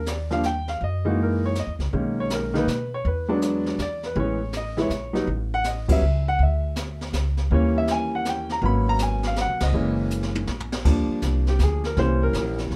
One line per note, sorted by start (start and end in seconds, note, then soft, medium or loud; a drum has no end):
0.00 0.77 D#2 medium
0.06 0.31 D5 medium
0.06 snare medium
0.06 hi-hat pedal medium
0.31 0.42 F3 soft
0.31 0.42 G3 soft
0.31 0.42 A#3 soft
0.31 0.42 D4 medium
0.31 0.44 F5 medium
0.31 snare soft
0.43 0.68 G5 medium
0.43 snare medium
0.43 hi-hat pedal soft
0.68 0.81 F5 medium
0.68 snare soft
0.81 1.64 F#2 medium
0.81 1.06 D#5 medium
0.81 brush sweep soft
0.81 kick soft
1.05 1.53 E3 medium
1.05 1.53 G#3 medium
1.05 1.53 A#3 medium
1.05 1.53 D#4 medium
1.05 1.19 F#4 medium
1.23 1.44 A#4 medium
1.46 1.56 C#5 medium
1.55 snare soft
1.55 hi-hat pedal soft
1.59 1.73 D#5 medium
1.67 1.78 E2 medium
1.79 1.91 C#2 medium
1.79 snare soft
1.93 2.63 B1 medium
1.93 2.49 D#3 medium
1.93 2.50 G#3 medium
1.93 2.49 A#3 medium
1.93 2.50 C#4 medium
1.93 brush sweep soft
1.93 kick soft
2.20 2.31 C#5 medium
2.30 2.55 A#4 medium
2.30 snare medium
2.30 hi-hat pedal soft
2.54 2.65 D#3 medium
2.54 2.66 G#3 medium
2.54 2.66 A#3 medium
2.54 2.66 D#4 medium
2.54 2.90 B4 medium
2.54 snare soft
2.67 3.01 B2 medium
2.67 snare medium
2.67 hi-hat pedal soft
2.94 3.05 C#5 medium
3.05 3.75 E2 medium
3.05 3.63 B4 medium
3.05 brush sweep medium
3.05 kick soft
3.28 3.76 F#3 medium
3.28 3.76 G#3 medium
3.28 3.76 B3 medium
3.28 3.77 D4 medium
3.42 snare medium
3.42 hi-hat pedal medium
3.66 snare soft
3.78 4.13 E2 medium
3.78 4.04 D5 medium
3.78 snare medium
3.78 hi-hat pedal medium
4.03 4.17 B4 medium
4.03 snare soft
4.16 4.86 A1 medium
4.16 4.38 E3 medium
4.16 4.38 G#3 medium
4.16 4.38 B3 medium
4.16 4.38 C#4 medium
4.16 brush sweep soft
4.16 kick soft
4.20 4.53 C#5 medium
4.53 snare medium
4.53 hi-hat pedal soft
4.57 4.79 D#5 medium
4.77 4.89 E3 medium
4.77 4.89 G#3 medium
4.77 4.89 B3 medium
4.77 4.89 E4 medium
4.77 snare soft
4.82 5.26 C#5 medium
4.89 5.24 A#1 medium
4.89 snare soft
4.89 hi-hat pedal soft
5.13 5.26 F#3 medium
5.13 5.26 G3 medium
5.13 5.26 B3 medium
5.13 5.26 D#4 medium
5.13 snare soft
5.27 5.98 A1 medium
5.27 brush sweep soft
5.27 kick soft
5.54 5.65 F#5 loud
5.64 5.89 D#5 medium
5.64 snare medium
5.64 hi-hat pedal medium
5.88 6.00 F#3 medium
5.88 6.01 G3 medium
5.88 6.01 B3 medium
5.88 6.01 C#4 medium
5.88 kick medium
5.88 crash medium
5.92 6.25 E5 medium
6.01 6.36 C#2 medium
6.28 6.40 F#5 medium
6.39 7.09 D2 medium
6.39 brush sweep soft
6.39 kick soft
6.43 6.98 E5 medium
6.76 snare medium
6.76 hi-hat pedal medium
7.01 snare soft
7.13 7.48 C#2 medium
7.13 snare medium
7.13 hi-hat pedal medium
7.37 snare soft
7.51 8.58 D#2 medium
7.51 8.55 E3 medium
7.51 8.55 G3 medium
7.51 8.55 A#3 medium
7.51 8.55 C#4 medium
7.51 7.76 C#5 medium
7.51 brush sweep soft
7.51 kick soft
7.78 7.89 E5 medium
7.87 snare medium
7.87 hi-hat pedal medium
7.91 8.13 G#5 medium
8.15 8.26 F#5 medium
8.25 snare medium
8.25 hi-hat pedal medium
8.29 8.51 G5 medium
8.49 8.63 A#5 medium
8.49 snare soft
8.62 9.45 G#1 medium
8.62 9.66 F#3 medium
8.62 9.66 A#3 medium
8.62 9.66 B3 medium
8.62 9.66 C#4 medium
8.62 8.87 B5 medium
8.62 brush sweep soft
8.62 kick soft
8.89 9.00 A#5 medium
8.99 9.24 G#5 medium
8.99 snare medium
8.99 hi-hat pedal medium
9.23 9.38 F5 medium
9.23 snare soft
9.36 snare medium
9.36 hi-hat pedal soft
9.41 9.62 F#5 medium
9.47 9.59 B1 medium
9.60 9.72 C#2 medium
9.60 10.09 D#5 medium
9.60 snare medium
9.60 ride medium
9.73 10.43 F#1 medium
9.73 10.48 E3 medium
9.73 10.48 G#3 medium
9.73 10.48 A#3 medium
9.73 10.48 C#4 medium
9.73 brush sweep soft
10.10 hi-hat pedal medium
10.23 snare soft
10.35 high tom medium
10.47 10.82 A#1 medium
10.47 snare medium
10.60 floor tom medium
10.72 snare medium
10.85 11.08 D#2 medium
10.85 11.89 F3 medium
10.85 11.89 G3 soft
10.85 11.89 A#3 soft
10.85 11.89 D4 medium
10.85 brush sweep soft
10.85 kick medium
10.85 snare soft
10.85 crash medium
11.08 muted upright bass stroke soft
11.22 11.58 C2 medium
11.22 kick soft
11.22 snare medium
11.22 hi-hat pedal medium
11.47 11.60 G4 medium
11.47 snare soft
11.59 11.95 D2 medium
11.59 kick soft
11.59 snare medium
11.59 hi-hat pedal medium
11.63 11.85 G#4 medium
11.84 11.97 A#4 medium
11.84 snare soft
11.97 12.33 C2 medium
11.97 12.76 E3 medium
11.97 12.76 G3 medium
11.97 12.76 A#3 medium
11.97 12.76 C#4 medium
11.97 12.21 C5 medium
11.97 brush sweep soft
11.97 kick soft
11.97 snare soft
12.23 12.57 A#4 medium
12.33 12.70 A#1 medium
12.33 kick soft
12.33 snare medium
12.33 hi-hat pedal soft
12.58 snare soft
12.71 12.76 C#2 medium
12.71 kick soft
12.71 snare soft